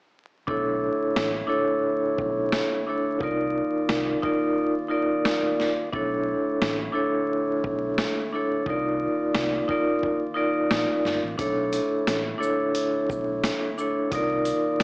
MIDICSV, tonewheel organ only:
0, 0, Header, 1, 2, 480
1, 0, Start_track
1, 0, Tempo, 681818
1, 337, Time_signature, 4, 2, 24, 8
1, 10441, End_track
2, 0, Start_track
2, 0, Title_t, "Tonewheel organ"
2, 0, Program_c, 0, 16
2, 338, Note_on_c, 0, 73, 69
2, 339, Note_on_c, 0, 50, 77
2, 339, Note_on_c, 0, 57, 65
2, 339, Note_on_c, 0, 64, 84
2, 2238, Note_off_c, 0, 73, 0
2, 2239, Note_off_c, 0, 50, 0
2, 2239, Note_off_c, 0, 57, 0
2, 2239, Note_off_c, 0, 64, 0
2, 2246, Note_on_c, 0, 58, 64
2, 2247, Note_on_c, 0, 51, 73
2, 2247, Note_on_c, 0, 65, 81
2, 2247, Note_on_c, 0, 74, 68
2, 4152, Note_off_c, 0, 58, 0
2, 4153, Note_off_c, 0, 51, 0
2, 4153, Note_off_c, 0, 65, 0
2, 4153, Note_off_c, 0, 74, 0
2, 4169, Note_on_c, 0, 50, 75
2, 4170, Note_on_c, 0, 57, 62
2, 4170, Note_on_c, 0, 64, 80
2, 4170, Note_on_c, 0, 73, 62
2, 6074, Note_off_c, 0, 50, 0
2, 6074, Note_off_c, 0, 57, 0
2, 6074, Note_off_c, 0, 64, 0
2, 6074, Note_off_c, 0, 73, 0
2, 6100, Note_on_c, 0, 51, 73
2, 6100, Note_on_c, 0, 65, 78
2, 6101, Note_on_c, 0, 58, 68
2, 6101, Note_on_c, 0, 74, 74
2, 7999, Note_off_c, 0, 51, 0
2, 7999, Note_off_c, 0, 65, 0
2, 8000, Note_off_c, 0, 58, 0
2, 8000, Note_off_c, 0, 74, 0
2, 8021, Note_on_c, 0, 50, 74
2, 8021, Note_on_c, 0, 57, 61
2, 8021, Note_on_c, 0, 64, 80
2, 8021, Note_on_c, 0, 73, 66
2, 9920, Note_off_c, 0, 50, 0
2, 9920, Note_off_c, 0, 57, 0
2, 9920, Note_off_c, 0, 64, 0
2, 9920, Note_off_c, 0, 73, 0
2, 9927, Note_on_c, 0, 65, 80
2, 9928, Note_on_c, 0, 51, 75
2, 9928, Note_on_c, 0, 74, 68
2, 9929, Note_on_c, 0, 58, 65
2, 10441, Note_off_c, 0, 51, 0
2, 10441, Note_off_c, 0, 58, 0
2, 10441, Note_off_c, 0, 65, 0
2, 10441, Note_off_c, 0, 74, 0
2, 10441, End_track
0, 0, End_of_file